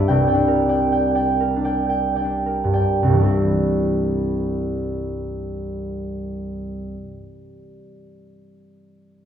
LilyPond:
<<
  \new Staff \with { instrumentName = "Harp" } { \time 3/4 \key c \mixolydian \tempo 4 = 57 << { g''2.~ | g''2.~ | g''2. | } \\ { d''16 <d'' g''>16 bes'16 <d'' g''>16 g''16 <d'' g''>16 bes'16 <d'' g''>16 g''16 <d'' g''>16 bes'16 <d'' g''>16~ | <d'' g''>2.~ | <d'' g''>2. | } >> }
  \new Staff \with { instrumentName = "Harp" } { \time 3/4 \key c \mixolydian \tuplet 3/2 { <c, d'>8 d'4~ d'4 d'8~ d'8 d'8 g,8 } | <c, g, e g c' e'>2.~ | <c, g, e g c' e'>2. | }
>>